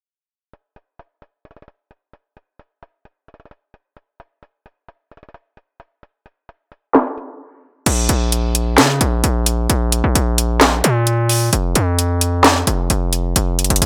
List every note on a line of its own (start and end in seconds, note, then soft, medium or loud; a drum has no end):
0.53 closed hi-hat medium
0.76 closed hi-hat medium
0.99 closed hi-hat medium
1.22 closed hi-hat medium
1.45 closed hi-hat medium
1.51 closed hi-hat medium
1.57 closed hi-hat medium
1.62 closed hi-hat medium
1.68 closed hi-hat medium
1.91 closed hi-hat medium
2.13 closed hi-hat medium
2.37 closed hi-hat medium
2.59 closed hi-hat medium
2.83 closed hi-hat medium
3.05 closed hi-hat medium
3.28 closed hi-hat medium
3.34 closed hi-hat medium
3.40 closed hi-hat medium
3.45 closed hi-hat medium
3.51 closed hi-hat medium
3.74 closed hi-hat medium
3.97 closed hi-hat medium
4.20 closed hi-hat medium
4.43 closed hi-hat medium
4.66 closed hi-hat medium
4.88 closed hi-hat medium
5.12 closed hi-hat medium
5.17 closed hi-hat medium
5.23 closed hi-hat medium
5.29 closed hi-hat medium
5.34 closed hi-hat medium
5.57 closed hi-hat medium
5.80 closed hi-hat medium
6.03 closed hi-hat medium
6.26 closed hi-hat medium
6.49 closed hi-hat medium
6.72 closed hi-hat medium
6.95 snare loud
6.95 clap medium
6.95 closed hi-hat medium
7.18 closed hi-hat medium
7.86 8.08 A#1 loud
7.86 closed hi-hat medium
7.86 crash loud
8.09 8.79 A#1 loud
8.09 closed hi-hat medium
8.32 closed hi-hat medium
8.55 closed hi-hat medium
8.78 9.00 C#3 loud
8.78 snare loud
8.78 clap loud
8.78 closed hi-hat medium
9.01 9.23 A#1 loud
9.01 closed hi-hat medium
9.24 9.68 A#1 loud
9.24 closed hi-hat medium
9.46 closed hi-hat medium
9.70 10.03 A#1 loud
9.70 closed hi-hat medium
9.92 closed hi-hat medium
10.04 10.15 A#1 loud
10.15 10.81 A#1 loud
10.15 closed hi-hat medium
10.38 closed hi-hat medium
10.61 snare loud
10.61 clap medium
10.61 closed hi-hat medium
10.84 11.50 A#2 loud
10.84 closed hi-hat medium
11.07 closed hi-hat medium
11.29 open hi-hat medium
11.53 11.75 F1 loud
11.53 closed hi-hat medium
11.75 12.64 F2 loud
11.75 closed hi-hat medium
11.99 closed hi-hat medium
12.21 closed hi-hat medium
12.44 snare loud
12.44 clap medium
12.44 closed hi-hat medium
12.67 12.89 F1 loud
12.67 closed hi-hat medium
12.90 13.34 F1 loud
12.90 closed hi-hat medium
13.13 closed hi-hat medium
13.36 13.60 F1 loud
13.36 closed hi-hat medium
13.59 13.70 F#1 loud
13.59 closed hi-hat medium
13.64 closed hi-hat medium
13.70 13.81 F1 loud
13.70 closed hi-hat medium
13.76 closed hi-hat medium
13.82 13.86 D#1 loud
13.82 closed hi-hat medium